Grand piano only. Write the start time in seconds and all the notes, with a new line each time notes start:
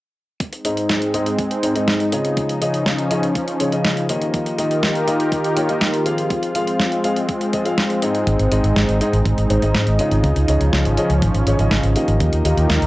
0.65 G#2 C4 D#4 G#4 D#5
1.14 G#2 C4 D#4 G#4 D#5
1.63 G#2 C4 D#4 G#4 C5
1.76 G#2 C4 D#4 G#4 D#5
2.12 C#3 C#4 F4 G#4 D#5
2.62 C#3 C#4 F4 G#4 D#5
3.11 C#3 C#4 F4 G#4 D#5
3.60 C#3 C#4 F4 G#4 C#5
3.72 C#3 C#4 F4 G#4 D#5
4.09 D#3 A#3 F4 G4 D#5
4.58 D#3 A#3 F4 G4 D#5
5.07 D#3 A#3 F4 G4 D#5
5.57 D#3 A#3 F4 G4 C#5
5.69 D#3 A#3 F4 G4 D#5
6.06 F3 C4 F4 G#4 F5
6.55 F3 C4 F4 G#4 F5
7.04 F3 C4 F4 G#4 F5
7.53 F3 C4 F4 G#4 D#5
7.66 F3 C4 F4 G#4 F5
8.02 G#2 C4 D#4 G#4 D#5
8.52 G#2 C4 D#4 G#4 D#5
9.01 G#2 C4 D#4 G#4 D#5
9.50 G#2 C4 D#4 G#4 C5
9.62 G#2 C4 D#4 G#4 D#5
9.99 C#3 C#4 F4 G#4 D#5
10.48 C#3 C#4 F4 G#4 D#5
10.98 C#3 C#4 F4 G#4 D#5
11.47 C#3 C#4 F4 G#4 C#5
11.59 C#3 C#4 F4 G#4 D#5
11.96 D#3 A#3 F4 G4 D#5
12.45 D#3 A#3 F4 G4 D#5